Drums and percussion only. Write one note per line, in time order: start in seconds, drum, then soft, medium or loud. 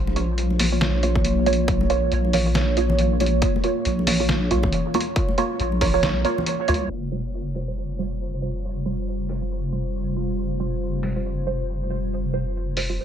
0.07 high conga loud
0.16 closed hi-hat medium
0.38 closed hi-hat soft
0.50 high conga medium
0.59 open hi-hat medium
0.59 low conga medium
0.81 snare loud
0.81 closed hi-hat medium
0.81 high conga medium
1.03 closed hi-hat soft
1.15 kick medium
1.15 high conga medium
1.15 low conga medium
1.25 closed hi-hat medium
1.46 closed hi-hat soft
1.46 high conga medium
1.53 closed hi-hat medium
1.68 kick loud
1.68 closed hi-hat medium
1.81 high conga medium
1.90 closed hi-hat medium
2.12 closed hi-hat medium
2.25 high conga medium
2.33 open hi-hat medium
2.33 low conga medium
2.54 snare loud
2.54 closed hi-hat medium
2.54 high conga medium
2.77 closed hi-hat medium
2.90 high conga medium
2.90 low conga medium
2.99 closed hi-hat medium
3.20 closed hi-hat soft
3.20 high conga medium
3.26 closed hi-hat medium
3.42 kick loud
3.42 closed hi-hat medium
3.56 high conga medium
3.64 closed hi-hat medium
3.85 closed hi-hat medium
3.99 high conga medium
4.07 open hi-hat loud
4.07 low conga medium
4.29 snare loud
4.29 closed hi-hat medium
4.29 high conga medium
4.51 closed hi-hat medium
4.63 kick medium
4.63 high conga medium
4.63 low conga medium
4.73 closed hi-hat medium
4.94 closed hi-hat soft
4.94 high conga medium
5.00 closed hi-hat medium
5.16 kick loud
5.16 closed hi-hat medium
5.29 high conga medium
5.38 closed hi-hat medium
5.60 closed hi-hat medium
5.72 high conga medium
5.81 kick medium
5.81 open hi-hat medium
5.81 low conga medium
6.03 snare loud
6.03 closed hi-hat medium
6.03 high conga medium
6.25 closed hi-hat medium
6.38 high conga medium
6.38 low conga medium
6.46 closed hi-hat medium
6.68 closed hi-hat soft
6.68 high conga medium
6.74 closed hi-hat medium
6.90 crash medium
7.55 open hi-hat medium
9.29 open hi-hat medium
11.03 open hi-hat medium
12.77 open hi-hat medium